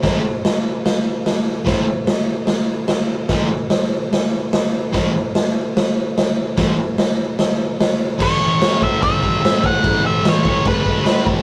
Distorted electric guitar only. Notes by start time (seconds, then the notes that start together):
0.02 A2 E3 A3
1.65 A2 E3 A3
3.30 A2 E3 A3
4.92 A2 E3 A3
6.57 A2 E3 A3
8.19 A2 E3 A3
8.40 A3
8.44 E3
8.60 A2 E3
8.64 A3
8.80 A3
8.84 E3
9.00 A2 E3
9.04 A3
9.21 A3
9.26 E3
9.41 A2 E3 A3
9.61 A3
9.65 E3
9.83 A2 E3 A3
10.03 A3
10.07 E3
10.23 A2 E3
10.28 A3
10.43 E3 A3
10.65 A2 E3
10.70 A3
10.85 E3 A3
11.05 A2 E3
11.10 A3
11.27 E3 A3